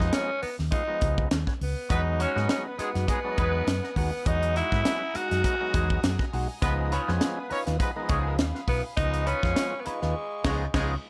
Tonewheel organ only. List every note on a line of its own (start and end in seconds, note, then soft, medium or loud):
0.00 0.31 F3 medium
0.00 0.31 G#3 medium
0.00 0.31 B3 medium
0.00 0.31 D#4 medium
0.42 0.50 B3 soft
0.42 0.50 D#4 soft
0.71 0.83 F3 medium
0.71 0.83 G#3 medium
0.71 0.84 B3 medium
0.71 0.84 F4 medium
0.87 1.28 F3 medium
0.87 1.29 G#3 medium
0.87 1.29 B3 medium
0.87 1.29 D#4 medium
1.47 1.53 B3 soft
1.47 1.54 C#4 soft
1.89 2.21 F#3 medium
1.89 2.22 G#3 medium
1.89 2.22 B3 medium
1.89 2.22 D#4 medium
2.35 2.67 F#3 medium
2.35 2.67 G#3 medium
2.35 2.67 B3 medium
2.35 2.67 D#4 medium
2.78 2.86 B3 soft
2.78 2.87 C#4 soft
3.07 3.19 F#3 medium
3.07 3.20 G#3 medium
3.07 3.20 B3 medium
3.07 3.20 D#4 medium
3.24 3.65 F#3 medium
3.24 3.65 G#3 medium
3.24 3.65 B3 medium
3.24 3.31 D4 medium
3.32 3.69 D#4 medium
3.83 3.90 B3 soft
3.83 3.90 D#4 soft
4.26 4.57 F#3 medium
4.26 4.58 G#3 medium
4.26 4.58 B3 medium
4.26 4.58 D#4 medium
4.72 5.03 F#3 medium
4.72 5.03 G#3 medium
4.72 5.03 B3 medium
4.72 5.04 E4 medium
5.14 5.22 B3 soft
5.14 5.23 D#4 soft
5.44 5.56 F#3 medium
5.44 5.56 G#3 medium
5.44 5.56 B3 medium
5.44 5.56 D#4 medium
5.60 6.01 F#3 medium
5.60 6.01 G#3 medium
5.60 6.01 B3 medium
5.60 6.01 D#4 medium
6.19 6.25 B3 soft
6.19 6.26 D#4 soft
6.62 6.93 F3 loud
6.62 6.94 G#3 loud
6.62 6.94 B3 loud
6.62 6.94 D#4 loud
7.08 7.39 F3 loud
7.08 7.39 G#3 medium
7.08 7.39 B3 medium
7.08 7.39 C#4 loud
7.50 7.58 B3 soft
7.50 7.59 D#4 soft
7.79 7.91 F3 medium
7.79 7.91 G#3 medium
7.79 7.91 B3 medium
7.79 7.92 D#4 medium
7.96 8.02 D#3 medium
7.96 8.37 G#3 medium
7.96 8.37 B3 medium
7.96 8.37 D#4 loud
8.02 8.40 F3 medium
8.55 8.61 B3 soft
8.55 8.62 F4 soft
8.97 9.29 F3 loud
8.97 9.29 G#3 medium
8.97 9.29 B3 medium
8.97 9.29 D#4 loud
9.43 9.74 F3 medium
9.43 9.74 G#3 medium
9.43 9.75 B3 medium
9.43 9.75 F4 medium
9.85 9.93 B3 soft
9.85 9.94 C#4 soft
10.44 10.65 F3 loud
10.44 10.65 G#3 loud
10.44 10.65 B3 loud
10.44 10.66 D#4 loud
10.74 10.95 F3 loud
10.74 10.95 G#3 loud
10.74 10.95 B3 loud
10.74 10.95 D#4 loud